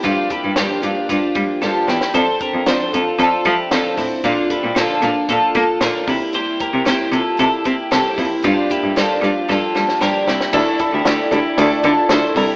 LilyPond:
<<
  \new Staff \with { instrumentName = "Upright piano" } { \time 4/4 \key c \mixolydian \tempo 4 = 114 r1 | r1 | r1 | r1 |
r1 | <e' a' d''>8 <e' a' d''>8 <e' a' d''>8 <e' a' d''>8 <e' a' d''>8 <e' a' d''>8 <e' a' d''>8 <e' a' d''>8 | }
  \new Staff \with { instrumentName = "Clean electric guitar" } { \time 4/4 \key c \mixolydian <d' f'>8 <e' g'>8 <d' g'>8 <d' f'>8 <d' f'>4 <f' a'>8 <e' g'>8 | <a' c''>8 <g' bes'>8 <a' c''>8 <f' a'>8 <f' a'>8 <e' g'>8 <f' a'>8 <c' e'>8 | <d' f'>8 <e' g'>8 <f' a'>8 <d' f'>8 <f' a'>4 <f' bes'>8 <e' g'>8 | <g' c''>8 <g' bes'>8 <g' c''>8 <f' a'>8 <e' a'>8 <e' g'>8 <e' a'>8 <c' e'>8 |
<d' f'>8 <e' g'>8 <f' a'>8 <d' f'>8 <f' a'>4 <g' bes'>8 <e' g'>8 | <e' a'>8. <e' g'>16 <e' g'>8 <e' g'>4 <f' a'>8 <a' c''>8 <g' bes'>8 | }
  \new Staff \with { instrumentName = "Twelve-string acoustic guitar" } { \time 4/4 \key c \mixolydian <g, d f bes d' g'>8 <f bes d' g'>8 <g, d f bes d' g'>8 <f bes d' g'>8 <f bes d' g'>8 <f bes d' g'>8 <g, d f bes d' g'>8 <f bes d' g'>8 | <f c' d' a'>8 <c' d' a'>8 <f c' d' a'>8 <c' d' a'>8 <f c' d' a'>8 <c' d' a'>8 <f c' d' a'>8 <c' d' a'>8 | <bes, d f bes d' a'>8 <f bes d' a'>8 <bes, d f bes d' a'>8 <f bes d' a'>8 <f bes d' a'>8 <f bes d' a'>8 <bes, d f bes d' a'>8 <bes e' g'>8 | <c g bes e' g'>8 <bes e' g'>8 <c g bes e' g'>8 <bes e' g'>8 <g bes e' g'>8 <bes e' g'>8 <c g bes e' g'>8 <bes e' g'>8 |
<g, d f bes d' g'>8 <f bes d' g'>8 <g, d f bes d' g'>8 <f bes d' g'>8 <f bes d' g'>8 <f bes d' g'>8 <g, d f bes d' g'>8 <f bes d' g'>8 | <d a d' e' a'>8 <d' e' a'>8 <a d' e' a'>8 <d' e' a'>8 <d a d' e' a'>8 <d' e' a'>8 <a d' e' a'>8 <d' e' a'>8 | }
  \new Staff \with { instrumentName = "Cello" } { \clef bass \time 4/4 \key c \mixolydian g,8 r16 g,16 g,8 g,8 g,8 g8 g,8 e,8 | f,8 r16 f,16 f,8 f,8 f,8 f8 f,8 a,8 | bes,8 r16 bes,16 bes,8 bes,8 bes,8 bes8 bes,8 c8~ | c8 r16 c16 c8 c8 c8 c'8 c8 f,8 |
g,8 r16 g,16 g,8 g,8 g,8 g8 g,8 c,8 | d,8 r16 d,16 d,8 d,8 d,8 d8 d,8 c,8 | }
  \new DrumStaff \with { instrumentName = "Drums" } \drummode { \time 4/4 <hh bd>8 <hh bd>8 <hh sn>8 hh8 <hh bd>8 <hh bd>8 sn8 sn16 sn16 | <hh bd>8 <hh bd>8 <hh sn>8 hh8 <hh bd>8 <hh bd>8 <hh sn>8 <hho bd>8 | <hh bd>8 <hh bd>8 <hh sn>8 hh8 <hh bd>8 <hh bd>8 <hh sn>8 <hho bd>8 | hh8 <hh bd>8 <hh sn>8 hh8 <hh bd>8 <hh bd>8 <hh sn>8 <hho bd>8 |
<hh bd>8 <hh bd>8 <hh sn>8 hh8 <bd sn>8 sn16 sn16 sn8 sn16 sn16 | <cymc bd>8 <hh bd>8 <hh sn>8 hh8 <hh bd>8 <hh bd>8 <hh sn>8 <hho bd>8 | }
>>